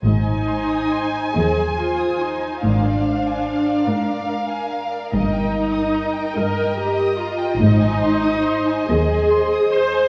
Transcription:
<<
  \new Staff \with { instrumentName = "Violin section" } { \time 6/8 \key aes \major \tempo 4. = 48 << { ees''16 aes''16 c'''16 ees'''16 c'''16 aes''16 ees''16 aes''16 c'''16 ees'''16 c'''16 aes''16 | bes'16 d''16 f''16 aes''16 f''16 d''16 bes'16 d''16 f''16 aes''16 f''16 d''16 | ees''16 g''16 bes''16 ees'''16 bes''16 g''16 ees''16 g''16 bes''16 ees'''16 bes''16 g''16 | ees''16 aes''16 c'''16 ees'''16 c'''16 aes''16 ees''16 aes''16 c'''16 ees'''16 c'''16 aes''16 | } \\ { c''2.~ | c''4. bes'4.~ | bes'2. | c''2. | } >> }
  \new Staff \with { instrumentName = "Violin section" } { \time 6/8 \key aes \major aes''2. | f''2. | ees''2.~ | ees''2. | }
  \new Staff \with { instrumentName = "Viola section" } { \time 6/8 \key aes \major ees'4. aes'8 f'8 ees'8 | d'2~ d'8 r8 | ees'4. bes'8 g'8 f'8 | ees'4. aes'4 c''8 | }
  \new Staff \with { instrumentName = "Cello section" } { \clef bass \time 6/8 \key aes \major aes,4. ees,4. | aes,4. aes,4. | g,4. g,4. | aes,4. ees,4. | }
  \new Staff \with { instrumentName = "Double bass section" } { \clef bass \time 6/8 \key aes \major aes,,4 r2 | aes,,4 r2 | g,,4 r2 | aes,,4 r2 | }
>>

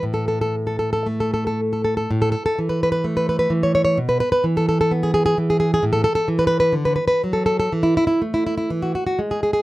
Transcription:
\new Staff \with { instrumentName = "Nylon-string guitar" } { \time 2/4 \key e \mixolydian \tempo 4 = 62 << { r32 a'32 a'32 a'32 r32 a'32 a'32 a'32 r32 a'32 a'32 a'32 r32 a'32 a'32 a'32 | r32 a'32 r32 a'32 r32 b'32 b'32 b'32 r32 b'32 b'32 b'32 r32 cis''32 cis''32 cis''32 | r32 b'32 b'32 b'32 r32 a'32 a'32 a'32 r32 gis'32 gis'32 gis'32 r32 gis'32 gis'32 gis'32 | r32 a'32 a'32 a'32 r32 b'32 b'32 b'32 r32 b'32 b'32 b'32 r32 a'32 a'32 a'32 |
r32 e'32 e'32 e'32 r32 e'32 e'32 e'32 r32 fis'32 fis'32 fis'32 r32 gis'32 gis'32 gis'32 | } \\ { a,4 a4 | a,16 r16 e8 a8 e8 | b,16 r16 e8 b8 e8 | a,16 r16 e8 d16 r16 fis8 |
e16 r16 a8 e16 r16 gis8 | } >> }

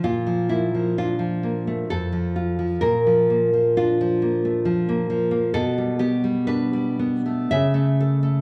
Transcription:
\new Staff \with { instrumentName = "Nylon-string guitar" } { \time 3/4 \key bes \lydian \tempo 4 = 65 << { f'8 e'8 f'4 a'4 | bes'4 f'8 r4. | \key g \lydian a'8 g'8 b'4 e''4 | } \\ { bes,16 f16 bes16 f16 d'16 f16 bes16 a16 f,16 f16 f'16 f16 | bes,16 f16 bes16 f16 d'16 f16 bes16 a16 f16 bes16 f16 bes16 | b,16 g16 b16 g16 d'16 g16 b16 a16 cis16 a16 a'16 a16 | } >> }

